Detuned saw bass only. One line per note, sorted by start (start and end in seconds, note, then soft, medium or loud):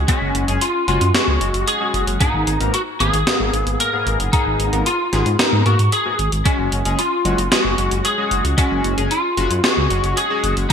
0.21 0.31 F#1 medium
0.35 0.44 F#1 medium
0.48 0.58 F#1 medium
0.88 0.98 F#1 medium
1.01 1.11 F#2 medium
1.28 1.37 C#2 medium
1.41 1.51 F#1 medium
1.54 1.64 F#1 medium
1.94 2.04 F#1 medium
2.07 2.17 F#1 medium
2.34 2.44 G#1 medium
2.47 2.57 G#1 medium
2.60 2.70 G#1 medium
3.00 3.10 G#1 medium
3.14 3.23 G#1 medium
3.40 3.50 G#1 medium
3.54 3.63 G#1 medium
3.67 3.76 G#1 medium
4.07 4.16 G#1 medium
4.20 4.29 F#1 medium
4.46 4.56 G#1 medium
4.60 4.69 G#1 medium
4.73 4.83 G#1 medium
5.13 5.22 G#1 loud
5.26 5.36 G#2 medium
5.53 5.62 G#2 medium
5.66 5.76 G#2 medium
5.79 5.89 G#2 medium
6.19 6.29 G#1 medium
6.32 6.42 G#1 medium
6.59 6.68 F#1 medium
6.72 6.82 F#1 medium
6.85 6.95 F#1 medium
7.25 7.35 F#1 loud
7.38 7.48 F#1 medium
7.65 7.75 F#1 medium
7.78 7.88 F#1 medium
7.91 8.01 F#1 medium
8.31 8.41 F#1 medium
8.45 8.54 C#2 medium
8.71 8.81 F#1 medium
8.84 8.94 F#1 medium
8.98 9.07 F#1 medium
9.38 9.47 F#1 medium
9.51 9.60 F#2 medium
9.77 9.87 C#2 medium
9.91 10.00 F#1 loud
10.04 10.14 F#1 medium
10.44 10.53 F#1 medium
10.57 10.67 F#1 medium